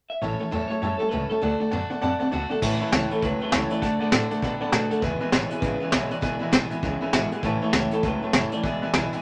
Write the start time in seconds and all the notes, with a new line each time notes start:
0.10 E5
0.21 A1 A2 E3 A3 C#4 A4 C#5 E5 A5
0.39 A2 E3 A3 C#4 A4 C#5 E5 A5
0.51 E2 A2 E3 F#3 A3 C#4 A4 C#5 E5 A5
0.68 A2 F#3 C#4 A4 C#5 E5 A5, muted upright bass stroke
0.73 A3
0.82 F#2 A2 E3 G3 A3 C#4 A4 C#5 E5 A5
0.98 A2 G3 A3 C#4 A4 C#5 E5 A5, muted upright bass stroke
1.09 A2 E3 F#3 A3 C#4 B4 C#5 E5 A5
1.13 C#2 A4
1.30 A2 F#3 A3 C#4 A4 C#5 E5 A5
1.42 D2 D3 A3 D4 F#4 D5 F#5 A5
1.60 D3 A3 D4 F#4 D5 F#5 A5
1.71 F#2 D3 A3 B3 D4 F#4 D5 F#5 A5
1.90 D3 A3 B3 D4 F#4 D5 F#5 A5
2.01 F#2 D3 A3 C4 D4 F#4 D5 F#5 A5
2.19 D3 A3 C4 D4 F#4 D5 F#5 A5, muted upright bass stroke
2.31 D2 D3 A3 B3 D4 F#4 D5 F#5 A5
2.49 D3 A3 B3 D4 F#4 A4 D5 F#5 A5
2.62 A1 A2 E3 A3 C#4 E4 B4 C#5 E5 A5, kick, crash
2.80 A2 E3 A3 C#4 E4 C#5 E5 A5
2.92 C#2 A2 E3 A3 C#4 E4 C#5 E5 A5, snare, closed hi-hat
3.10 A2 E3 A3 C#4 E4 A4 C#5 E5 A5, closed hi-hat
3.22 C#2 A2 E3 F#3 A3 C#4 E4 B4 C#5 E5 A5, kick, closed hi-hat
3.40 A2 F#3 A3 C#4 E4 C#5 E5 A5, muted upright bass stroke
3.52 C#2 A2 E3 A3 C#4 E4 C#5 E5 A5, snare, closed hi-hat
3.69 A2 E3 A3 C#4 E4 C#5 D5 E5 A5, closed hi-hat
3.82 D2 D3 A3 D4 F#4 D5 F#5 A5, kick, closed hi-hat
4.00 A2 D3 A3 D4 F#4 D5 F#5 A5
4.04 A3
4.11 A2 D3 A3 D4 F#4 D5 F#5 A5, snare, closed hi-hat
4.30 D3 A3 D4 F#4 D5 F#5 A5, closed hi-hat
4.42 B2 D3 A3 B3 D4 F#4 D5 F#5 A5, kick, closed hi-hat
4.60 D3 A3 B3 D4 F#4 D5 F#5 A5, muted upright bass stroke
4.72 B2 D3 A3 D4 F#4 D5 F#5 A5, snare, closed hi-hat
4.90 D3 A3 D4 F#4 A4 D5 F#5 A5, muted upright bass stroke, closed hi-hat
5.01 E1 E2 B2 E3 G#3 D4 E4 B4 E5 G#5, kick, closed hi-hat
5.20 E2 B2 E3 G#3 D4 E4 B4 E5 G#5, muted upright bass stroke
5.32 G#1 E2 B2 E3 G#3 D4 E4 B4 C#5 E5 G#5, snare, closed hi-hat
5.50 E2 B2 E3 G#3 D4 E4 G#4 B4 E5 G#5, closed hi-hat
5.60 G#1 E2 C#3 E3 G#3 B4, kick, closed hi-hat
5.64 D4 E4 E5 G#5
5.80 E2 C#3 E3 G#3 D4 E4 B4 E5 G#5, muted upright bass stroke
5.91 B1 E2 B2 E3 G#3 D4 E4 B4 C#5 E5 G#5, snare, closed hi-hat
6.09 E2 B2 E3 G#3 D4 E4 B4 D5 E5 G#5, muted upright bass stroke, closed hi-hat
6.21 E2 B2 E3 G#3 D4 E4 B4 E5 G#5, kick, closed hi-hat
6.39 B1 E2 B2 E3 G#3 D4 E4 B4 E5 G#5
6.52 B1 E2 B2 E3 G#3 D4 E4 B4 G#5, snare, closed hi-hat
6.70 E2 B2 E3 G#3 D4 E4 B4 E5 G#5, muted upright bass stroke, closed hi-hat
6.82 C#2 E2 C#3 E3 G#3 D4 E4 B4 E5 G#5, kick, closed hi-hat
7.00 E2 C#3 E3 G#3 D4 E4 B4 E5 G#5
7.13 G#1 E2 B2 E3 G#3 D4 E4 F#4 B4 E5 G#5, snare, closed hi-hat
7.31 E2 B2 E3 G#3 D4 E4 G#4 B4 E5 G#5, closed hi-hat
7.43 A1 A2 E3 A3 C#4 E4 B4 C#5 E5 A5, kick, closed hi-hat
7.62 A2 E3 A3 C#4 E4 C#5 E5 A5
7.72 C#2 A2 E3 A3 C#4 E4 C#5 E5 A5, snare, closed hi-hat
7.91 A2 E3 A3 C#4 E4 A4 C#5 E5 A5, muted upright bass stroke, closed hi-hat
8.03 C#2 A2 E3 F#3 A3 C#4 E4 B4 C#5 E5 A5, kick, closed hi-hat
8.22 A2 F#3 A3 C#4 E4 C#5 E5 A5, muted upright bass stroke
8.33 F#1 A2 E3 A3 C#4 E4 C#5 E5 A5, snare, closed hi-hat
8.51 A2 E3 A3 C#4 E4 C#5 D5 E5 A5, closed hi-hat
8.63 E1 E2 B2 E3 G#3 D4 E4 B4 E5 G#5, kick, closed hi-hat
8.82 B1 E2 B2 E3 G#3 D4 E4 B4 E5 G#5
8.94 B1 E2 B2 E3 G#3 D4 E4 B4 E5 G#5, snare, closed hi-hat
9.12 E2 B2 E3 G#3 D4 E4 B4 E5 G#5, muted upright bass stroke, closed hi-hat